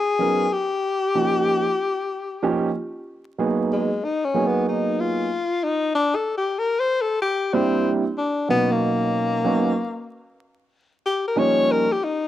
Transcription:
Already playing: G#4
0.19 F#3 B3 C#4 D#4 A#4
0.53 G4
1.15 F3 A#3 C#4 D#4 G4
2.43 F3 A#3 C#4 D#4 G4
3.38 F#3 A#3 B3 D#4 G#4
3.73 G#3
4.04 D#4
4.25 C#4
4.34 F#3 A#3 B3 D#4 G#4
4.47 B3
4.69 D#4
5.00 F4
5.63 D#4
5.95 D4
6.15 A4
6.38 G4
6.59 A#4
6.80 C5
7.02 A4
7.22 G4
7.53 G3 A#3 C4 D4 E4
8.18 D4
8.49 B2 F#3 A#3 B3 C#4 D#4
8.72 A#3
9.44 F#3 A#3 B3 C#4 D#4
11.06 G4
11.28 A#4
11.36 F3 G3 A#3 C#4 D#4 C#5
11.72 A#4
11.92 G4
12.04 D#4

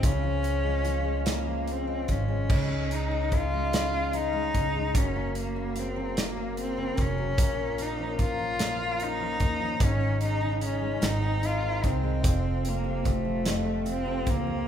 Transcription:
Already playing: G#2 F#3 C4
0.03 C#2 C#3 C#4 F4 G#4 F5, kick, closed hi-hat
0.23 F3
0.43 C#4, closed hi-hat
0.63 G#3
0.84 F3, closed hi-hat
1.04 G#3
1.26 C#3 A#3 C#4, snare, closed hi-hat
1.46 F3
1.68 closed hi-hat
1.72 C4
1.87 G#3
2.08 G#1 F3 C#4, kick, closed hi-hat
2.28 G#3
2.49 C#2 C#3 D#4 G#4 D#5, kick, crash
2.71 C#4
2.91 D#4, closed hi-hat
3.11 G#3
3.32 C#4 F4, kick, closed hi-hat
3.54 G#3
3.73 C#3, snare, closed hi-hat
3.93 C#4
4.13 D#4, closed hi-hat
4.33 G#3
4.54 C#2 C#4, kick, closed hi-hat
4.75 G#3
4.95 F#1 F#2 A#3 C#4 F#4 A#4, kick, closed hi-hat
5.16 A#3
5.35 A#3, closed hi-hat
5.56 C#3
5.76 A#3 C4, closed hi-hat
5.96 F#3
6.17 A#3, snare, closed hi-hat
6.37 A#3
6.57 C4, closed hi-hat
6.78 C#3
6.97 F1 A#3 C#4, kick, closed hi-hat
7.18 F#3
7.37 A#1 A#2 F4, kick, closed hi-hat
7.58 A#3
7.78 C#4 D#4, closed hi-hat
7.99 F3
8.19 A#3 F4, kick, closed hi-hat
8.39 F3
8.59 A#2, snare, closed hi-hat
8.80 A#3
9.00 C#4 D#4, closed hi-hat
9.20 F3
9.40 D#2 A#3, kick, closed hi-hat
9.60 F3
9.80 G#1 G#2 C#4 D#4 G#4 D#5, kick, closed hi-hat
10.01 C#4
10.21 D#4, closed hi-hat
10.41 C#3
10.61 C#4, closed hi-hat
10.82 G#3
11.01 G#1 G#2 C4, snare, closed hi-hat
11.06 D#4
11.22 C4
11.42 D#4, closed hi-hat
11.47 F4
11.62 D#3
11.83 C2 C4, kick, closed hi-hat
12.03 G#3
12.22 F1 F2 F4 A4 F5, kick, closed hi-hat
12.65 A#3 C4, closed hi-hat
12.84 C3
13.04 A3, kick, closed hi-hat
13.25 F3
13.45 F2, snare, closed hi-hat
13.65 A3
13.85 C4, closed hi-hat
14.06 C3
14.27 C#2 A#3, kick, closed hi-hat
14.47 F3

